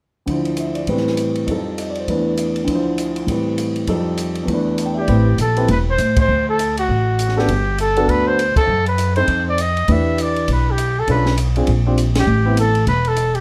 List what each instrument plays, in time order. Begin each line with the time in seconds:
0.26 grand piano D2 D3 F3 E4, kick, ride
0.31 grand piano C5
0.45 ride
0.57 grand piano E5, hi-hat pedal, ride
0.75 grand piano D5, ride
0.87 grand piano A2 E3 G3 C4 B4, kick, ride
0.97 snare
1.07 snare
1.17 hi-hat pedal, ride
1.35 ride
1.46 grand piano F2 F3 G3, kick, ride
1.50 grand piano D#4 A4
1.78 grand piano D#5, hi-hat pedal, ride
1.90 grand piano D5
1.95 ride
2.00 grand piano C5
2.08 grand piano E2 E3 A3 D4 B4, kick, ride
2.37 hi-hat pedal, ride
2.56 ride
2.64 grand piano D2 D3, kick, ride
2.70 grand piano F3 E4
2.75 grand piano C5
2.98 hi-hat pedal, ride
3.16 ride
3.26 grand piano A2 E3 G3 C4, kick, ride
3.32 grand piano B4
3.58 hi-hat pedal, ride
3.76 ride
3.87 grand piano F2 F3 G3 D#4 A4, kick, ride
4.17 hi-hat pedal, ride
4.35 ride
4.43 grand piano E2 E3
4.48 grand piano A3 D4, kick, ride
4.54 grand piano B4
4.78 grand piano A5, hi-hat pedal, ride
4.86 grand piano G5
4.94 trumpet G4, grand piano E5
5.01 grand piano D5
5.08 upright bass A1, grand piano C4 E4 G4 B4, kick, ride
5.38 upright bass A#1, trumpet A4, hi-hat pedal, ride
5.57 grand piano C4 E4 G4 B4, ride
5.68 upright bass E1, trumpet B4, kick, ride
5.90 trumpet C5
5.98 upright bass A2, hi-hat pedal, ride
6.16 trumpet C5, kick, ride
6.28 upright bass D2
6.49 trumpet A4
6.59 hi-hat pedal, ride
6.77 trumpet F#4, ride
6.89 upright bass A1, kick
7.19 hi-hat pedal, ride
7.29 snare
7.36 grand piano B3 D4 F#4 A4, trumpet G4, snare
7.48 upright bass G1, kick, ride
7.78 trumpet A4, hi-hat pedal, ride
7.96 grand piano B3 D4 F#4 A4, ride
8.08 upright bass D2, trumpet B4, kick, ride
8.27 trumpet C5
8.39 hi-hat pedal, ride
8.56 trumpet A4, muted upright bass stroke, kick, ride
8.67 upright bass F#2
8.86 trumpet B4, ride
8.98 hi-hat pedal, ride
9.16 grand piano C4 D#4 A4 C5, trumpet C5, ride
9.28 upright bass F2, kick, ride
9.50 trumpet D5
9.58 trumpet D#5, hi-hat pedal, ride
9.77 ride
9.88 upright bass E2, grand piano D4 E4 G4 B4, trumpet E5, kick, ride
10.18 trumpet D5, hi-hat pedal, ride
10.36 ride
10.48 upright bass B1, kick, ride
10.52 trumpet B4
10.71 trumpet G4
10.78 hi-hat pedal, ride
11.00 trumpet A4
11.08 upright bass B1, grand piano C#4 D4 F4 A4, trumpet B4, kick, ride
11.26 snare
11.38 hi-hat pedal, ride
11.56 grand piano C4 D4 F4 G#4, ride
11.67 upright bass A#1, kick, ride
11.86 grand piano C4 D4 F4 G4
11.98 hi-hat pedal, ride
12.15 trumpet G4, snare, ride
12.27 upright bass A1
12.45 grand piano B3 C4 E4 G4
12.57 trumpet A4, hi-hat pedal, ride
12.75 ride
12.87 upright bass E1, trumpet B4, kick, ride
13.05 trumpet A4, ride
13.16 hi-hat pedal, ride
13.35 trumpet G4, ride